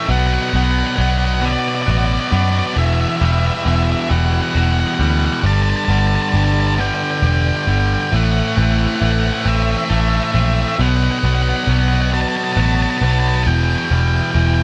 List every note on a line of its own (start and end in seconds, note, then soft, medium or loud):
0.06 0.37 B1 loud
0.06 0.52 B2 medium
0.06 0.52 F#3 medium
0.06 2.73 B3 medium
0.06 0.53 B3 medium
0.06 2.73 B4 medium
0.06 2.73 D5 medium
0.06 0.11 E5 medium
0.06 2.73 F#5 medium
0.11 0.19 F#5 loud
0.19 0.26 F#5 medium
0.27 0.33 F#5 medium
0.34 0.41 F#5 medium
0.42 0.49 F#5 medium
0.49 0.95 B2 medium
0.49 0.97 F#3 medium
0.49 0.56 F#5 medium
0.53 0.82 B1 loud
0.53 0.97 B3 loud
0.53 0.63 F#5 loud
0.63 0.71 F#5 medium
0.71 0.79 F#5 medium
0.79 0.86 F#5 medium
0.87 0.94 F#5 loud
0.96 1.55 B1 loud
0.96 1.40 B2 medium
0.96 1.41 F#3 medium
0.96 1.42 B3 loud
0.96 1.01 F#5 medium
1.01 1.09 F#5 medium
1.10 1.17 F#5 medium
1.18 1.25 F#5 medium
1.25 1.33 F#5 medium
1.34 1.41 F#5 medium
1.41 1.85 B2 medium
1.41 1.85 F#3 loud
1.41 1.86 B3 loud
1.41 1.52 D5 loud
1.41 1.49 F#5 medium
1.52 1.59 D5 medium
1.60 1.67 D5 medium
1.68 1.75 D5 medium
1.75 1.82 D5 loud
1.82 1.90 D5 medium
1.86 2.16 A1 loud
1.86 2.30 B2 medium
1.86 2.30 F#3 medium
1.86 2.31 B3 loud
1.86 2.76 F#4 medium
1.91 1.98 D5 loud
1.98 2.05 D5 medium
2.06 2.13 D5 loud
2.13 2.20 D5 medium
2.21 2.28 D5 loud
2.28 2.73 B2 loud
2.28 2.74 F#3 loud
2.28 5.82 B3 loud
2.28 2.36 D5 medium
2.32 2.60 F#2 medium
2.36 2.43 D5 loud
2.43 2.51 D5 medium
2.52 2.58 D5 loud
2.59 2.66 D5 medium
2.67 2.74 D5 medium
2.74 3.05 E1 medium
2.74 3.19 E2 medium
2.74 3.20 B2 medium
2.74 3.20 E3 loud
2.74 5.41 E3 medium
2.74 5.41 E4 medium
2.74 2.78 D5 medium
2.74 5.41 F#5 medium
2.78 2.86 E5 medium
2.86 2.94 E5 medium
2.94 3.01 E5 medium
3.01 3.09 E5 medium
3.09 3.17 E5 medium
3.17 3.63 E2 medium
3.17 3.63 B2 medium
3.17 3.24 E5 medium
3.21 3.50 E1 medium
3.21 3.64 E3 loud
3.21 4.08 G3 medium
3.21 3.32 E5 medium
3.32 3.39 E5 medium
3.40 3.46 E5 medium
3.46 3.54 E5 medium
3.55 3.62 E5 medium
3.64 3.94 E1 medium
3.64 4.08 E2 medium
3.64 4.08 B2 medium
3.64 4.08 E3 loud
3.64 3.75 E5 medium
3.76 3.84 E5 medium
3.84 3.91 E5 medium
3.92 4.00 E5 medium
4.01 4.09 E5 medium
4.09 4.39 E1 medium
4.09 4.53 E2 loud
4.09 4.53 B2 loud
4.09 4.54 E3 loud
4.09 4.98 G3 medium
4.09 4.17 F#5 loud
4.18 4.25 F#5 medium
4.26 4.33 F#5 loud
4.34 4.41 F#5 medium
4.42 4.50 F#5 loud
4.50 4.57 F#5 medium
4.54 4.83 E1 medium
4.54 4.98 E2 medium
4.54 4.98 B2 medium
4.54 4.98 E3 medium
4.54 5.44 F#4 medium
4.54 4.64 F#5 loud
4.64 4.72 F#5 medium
4.72 4.80 F#5 loud
4.80 4.87 F#5 medium
4.87 4.94 F#5 loud
4.95 5.02 F#5 medium
4.99 5.28 D2 loud
4.99 5.41 E2 loud
4.99 5.41 B2 loud
4.99 5.41 E3 loud
4.99 5.44 G3 medium
4.99 5.10 F#5 loud
5.10 5.18 F#5 medium
5.19 5.25 F#5 loud
5.25 5.33 F#5 medium
5.33 5.41 F#5 loud
5.41 5.72 G1 loud
5.41 5.87 G2 medium
5.41 5.87 D3 medium
5.41 8.08 G3 medium
5.41 5.87 G3 loud
5.41 8.09 B4 medium
5.41 8.09 D5 medium
5.41 5.46 F#5 medium
5.46 5.53 A5 loud
5.53 5.61 A5 medium
5.62 5.69 A5 medium
5.70 5.76 A5 medium
5.76 5.84 A5 medium
5.85 6.17 G1 medium
5.85 6.31 G2 medium
5.85 6.32 D3 loud
5.85 6.32 G3 medium
5.85 6.77 B3 medium
5.85 5.92 A5 medium
5.93 5.98 A5 loud
5.99 6.06 A5 medium
6.07 6.15 A5 loud
6.15 6.22 A5 medium
6.22 6.29 A5 medium
6.29 6.76 G2 medium
6.29 6.76 D3 medium
6.29 6.77 G3 loud
6.29 6.36 A5 medium
6.34 6.90 G1 loud
6.34 6.44 A5 medium
6.44 6.52 A5 medium
6.52 6.60 A5 medium
6.60 6.67 A5 medium
6.67 6.75 A5 medium
6.75 7.21 G2 medium
6.75 7.22 D3 loud
6.75 7.22 G3 loud
6.75 7.66 B3 medium
6.75 6.80 A5 medium
6.80 6.87 G5 loud
6.87 6.95 G5 medium
6.95 7.03 G5 medium
7.04 7.10 G5 medium
7.11 7.18 G5 loud
7.18 7.66 G2 medium
7.18 7.26 G5 loud
7.23 7.51 E1 medium
7.23 7.66 D3 loud
7.23 7.67 G3 loud
7.23 8.12 G4 medium
7.27 7.33 G5 loud
7.33 7.41 G5 medium
7.42 7.48 G5 loud
7.48 7.56 G5 medium
7.56 7.63 G5 loud
7.63 8.09 G2 medium
7.63 7.70 G5 medium
7.67 7.95 G1 medium
7.67 8.09 D3 loud
7.67 8.09 G3 loud
7.67 8.12 B3 medium
7.67 7.78 G5 loud
7.79 7.86 G5 medium
7.87 7.93 G5 medium
7.94 8.01 G5 medium
8.01 8.08 G5 loud
8.08 8.55 A2 medium
8.08 8.56 E3 loud
8.08 10.76 A3 medium
8.08 10.76 A4 medium
8.08 10.76 C5 medium
8.08 10.76 E5 medium
8.08 8.16 G5 medium
8.13 8.41 A1 medium
8.13 8.57 A3 loud
8.13 8.24 F#5 loud
8.24 8.31 F#5 medium
8.31 8.39 F#5 medium
8.40 8.47 F#5 medium
8.48 8.55 F#5 loud
8.56 8.85 A1 medium
8.56 9.00 A2 medium
8.56 9.00 E3 loud
8.56 9.01 A3 loud
8.56 9.44 C4 medium
8.56 8.63 F#5 medium
8.64 8.71 F#5 medium
8.72 8.78 F#5 medium
8.78 8.86 F#5 medium
8.87 8.95 F#5 medium
8.96 9.04 F#5 medium
9.01 9.29 A1 loud
9.01 9.44 A2 medium
9.01 9.45 E3 loud
9.01 9.45 A3 loud
9.01 9.11 F#5 medium
9.12 9.19 F#5 medium
9.20 9.26 F#5 medium
9.26 9.34 F#5 medium
9.34 9.41 F#5 medium
9.41 9.48 F#5 medium
9.45 9.74 A1 medium
9.45 9.87 A2 loud
9.45 9.88 E3 loud
9.45 9.89 A3 loud
9.45 10.34 C4 medium
9.45 9.55 E5 medium
9.56 9.62 E5 medium
9.62 9.70 E5 medium
9.71 9.77 E5 medium
9.78 9.85 E5 medium
9.85 10.31 A2 medium
9.85 10.32 E3 loud
9.85 9.93 E5 medium
9.90 10.19 A1 medium
9.90 10.32 A3 loud
9.90 10.79 A4 medium
9.90 10.01 E5 medium
10.01 10.09 E5 medium
10.09 10.16 E5 loud
10.17 10.24 E5 medium
10.24 10.32 E5 loud
10.32 10.63 A#1 medium
10.32 10.76 A2 loud
10.32 10.76 E3 loud
10.32 10.76 A3 loud
10.32 10.79 C4 medium
10.32 10.39 E5 medium
10.40 10.45 E5 medium
10.45 10.53 E5 medium
10.54 10.62 E5 medium
10.62 10.68 E5 medium
10.68 10.76 E5 medium
10.77 11.07 B1 medium
10.77 11.22 B2 loud
10.77 11.23 F#3 medium
10.77 11.24 B3 loud
10.77 13.44 B4 medium
10.77 13.44 D5 medium
10.77 10.84 E5 medium
10.81 13.45 B3 medium
10.81 10.88 F#5 medium
10.89 10.96 F#5 medium
10.96 11.03 F#5 medium
11.04 11.11 F#5 medium
11.11 11.19 F#5 medium
11.19 11.26 F#5 medium
11.23 11.52 B1 medium
11.23 11.68 B2 medium
11.23 11.69 F#3 loud
11.23 11.69 B3 loud
11.23 11.34 F#5 medium
11.35 11.42 F#5 medium
11.42 11.49 F#5 medium
11.49 11.56 F#5 medium
11.57 11.64 F#5 medium
11.64 12.24 B1 loud
11.64 11.72 F#5 medium
11.69 12.11 B2 medium
11.69 12.11 F#3 loud
11.69 12.13 B3 loud
11.73 11.79 F#5 medium
11.79 11.87 F#5 medium
11.88 11.95 F#5 medium
11.95 12.01 F#5 medium
12.02 12.09 F#5 medium
12.12 12.56 B2 loud
12.12 12.57 F#3 loud
12.12 12.58 B3 loud
12.12 12.21 A5 loud
12.21 12.28 A5 medium
12.29 12.36 A5 loud
12.37 12.44 A5 loud
12.44 12.52 A5 loud
12.53 12.59 A5 loud
12.57 12.85 A1 loud
12.57 13.01 B2 medium
12.57 13.02 F#3 loud
12.57 13.03 B3 medium
12.57 13.46 F#4 medium
12.57 12.66 A5 loud
12.66 12.74 A5 loud
12.75 12.82 A5 loud
12.82 12.90 A5 loud
12.90 12.97 A5 loud
12.98 13.48 B1 loud
12.98 13.04 A5 loud
13.02 13.44 B2 loud
13.02 13.44 F#3 loud
13.02 14.63 B3 loud
13.02 13.12 A5 loud
13.13 13.19 A5 loud
13.20 13.27 A5 loud
13.28 13.35 A5 medium
13.36 13.43 A5 loud
13.44 13.75 E1 medium
13.44 13.89 E2 medium
13.44 13.89 B2 medium
13.44 14.63 E3 medium
13.44 13.90 E3 loud
13.44 14.63 E4 medium
13.44 13.54 G5 loud
13.44 13.47 A5 medium
13.54 13.62 G5 medium
13.63 13.69 G5 medium
13.70 13.77 G5 medium
13.78 13.85 G5 medium
13.85 13.93 G5 medium
13.90 14.19 E1 medium
13.90 14.32 E2 medium
13.90 14.33 B2 medium
13.90 14.33 E3 medium
13.90 14.63 G3 medium
13.90 14.00 G5 medium
14.00 14.07 G5 medium
14.08 14.15 G5 medium
14.16 14.23 G5 medium
14.23 14.31 G5 medium
14.31 14.63 E1 medium
14.31 14.63 E2 medium
14.31 14.63 B2 medium
14.31 14.63 E3 medium
14.31 14.39 G5 medium
14.39 14.46 G5 medium
14.47 14.54 G5 medium
14.54 14.62 G5 medium